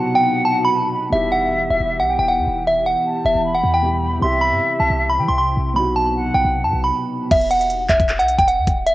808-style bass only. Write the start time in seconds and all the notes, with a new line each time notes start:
1.12 E1
1.70 E1
1.80 E1
2.00 B1
2.19 E1
2.38 E2
2.48 D#1
3.25 E1
3.35 E1
3.64 E2
4.22 C2
4.51 G2
4.80 C2
4.90 C2
5.18 E3
5.29 C2
5.57 B1
6.35 B1
6.45 B1
6.64 F#2
6.73 B1
7.31 E1
7.89 E1
8.00 E1
8.19 B1
8.38 E1
8.58 E2
8.67 D#1